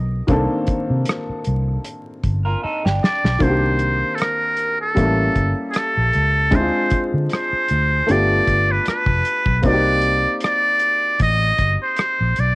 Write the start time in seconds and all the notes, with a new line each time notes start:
Already playing: B1 D3 D#3 A#3 C4 G4
0.27 C2 D#3 A#3 C4 D4 A4, kick, closed hi-hat
0.67 muted fingered electric bass stroke, kick, closed hi-hat
0.90 C3
1.06 cross-stick, closed hi-hat
1.30 muted fingered electric bass stroke
1.45 C2, closed hi-hat
1.85 closed hi-hat
2.24 G1, kick, closed hi-hat
2.45 F4 A#4
2.63 D#4 A4, muted fingered electric bass stroke
2.85 G1 D4 G4, snare
3.04 D5, snare
3.24 B1, snare
3.39 C2 D#3 A#3 C4 D4 C5, kick, closed hi-hat
3.43 F#4
3.49 G4
3.79 closed hi-hat
4.15 A4, closed hi-hat
4.21 A#4, cross-stick
4.57 closed hi-hat
4.81 A4
4.95 A1 G3 A#3 C#4 E4 A4, kick, closed hi-hat
5.35 G1, kick, closed hi-hat
5.70 G#4, closed hi-hat
5.76 A4, cross-stick
5.97 A#1
6.13 C#2, closed hi-hat
6.51 D2 G#3 C4 D4 E4 G#4, kick, closed hi-hat
6.55 C5
6.60 F4
6.90 muted fingered electric bass stroke, kick, closed hi-hat
7.14 D3
7.30 C5, cross-stick, closed hi-hat
7.53 muted fingered electric bass stroke
7.68 D2, closed hi-hat
8.06 G1 A3 B3 D4 F4 G4, closed hi-hat
8.11 D5
8.47 G1, kick, closed hi-hat
8.71 B4
8.85 B4, muted fingered electric bass stroke, cross-stick, closed hi-hat
9.06 F1, kick
9.25 closed hi-hat
9.46 B1, kick
9.62 C2 A#3 C4 D#4, kick, closed hi-hat
9.66 F#4 D5
9.73 G4
10.01 closed hi-hat
10.40 cross-stick, closed hi-hat
10.45 D5
10.79 closed hi-hat
11.19 A1 D#5, kick, closed hi-hat
11.58 G1, kick, closed hi-hat
11.83 C5
11.96 cross-stick, closed hi-hat
12.21 A#1
12.36 B1 D5, closed hi-hat